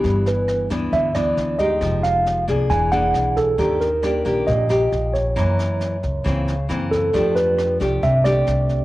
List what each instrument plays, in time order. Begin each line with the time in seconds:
Already playing: nylon-string guitar E3 B3 D4, tine electric piano G4
0.04 upright bass G1, nylon-string guitar G2, kick, snare
0.26 tine electric piano B4, snare
0.48 cross-stick, snare
0.70 upright bass D2, nylon-string guitar E3 B3 D4, kick, snare
0.93 upright bass D2, nylon-string guitar D3, tine electric piano E5, kick, snare
1.15 nylon-string guitar E3 B3 D4, tine electric piano D5, cross-stick, snare
1.37 upright bass D2, snare
1.59 nylon-string guitar G#3 D#4 G4, tine electric piano D#5, kick, snare
1.81 upright bass F1, nylon-string guitar F3, kick, cross-stick, snare
2.03 tine electric piano F5, snare
2.26 snare
2.48 upright bass C2, nylon-string guitar A#3 D4 G#4, kick, snare
2.70 upright bass E1, nylon-string guitar E3, tine electric piano G#5, kick, cross-stick, snare
2.92 nylon-string guitar A#3 D4 G#4, tine electric piano F#5, snare
3.14 upright bass B1, cross-stick, snare
3.37 tine electric piano A4, kick, snare
3.58 upright bass D#2, nylon-string guitar D#3 A#3 D4 G4, kick, snare
3.81 tine electric piano A#4, snare
4.03 nylon-string guitar A#3 D4 G4, cross-stick, snare
4.25 upright bass A#1, nylon-string guitar A#3 D4 G4, kick, snare
4.47 upright bass A#1, nylon-string guitar A#2, tine electric piano D#5, kick, snare
4.69 nylon-string guitar A#3 G4, cross-stick, snare
4.92 upright bass A#1, snare
5.14 tine electric piano C#5, kick, snare
5.36 nylon-string guitar F#2 E3 A#3, upright bass F#2, kick, cross-stick, snare
5.59 snare
5.81 snare
6.03 upright bass C#2, kick, snare
6.24 upright bass C#2, nylon-string guitar C#3 E3 A#3 C4, kick, cross-stick, snare
6.48 snare
6.69 upright bass F#2, nylon-string guitar E3 A#3 C4, cross-stick, snare
6.91 tine electric piano A4, kick, snare
7.13 upright bass F2, nylon-string guitar F3 A3 D4 G4, kick, snare
7.36 tine electric piano B4, snare
7.59 cross-stick, snare
7.80 upright bass C2, nylon-string guitar A3 D4 G4, kick, snare
8.03 upright bass C2, nylon-string guitar C3, tine electric piano E5, kick, snare
8.25 nylon-string guitar A3 D4 G4, tine electric piano D5, cross-stick, snare
8.47 upright bass C2, snare
8.69 kick, snare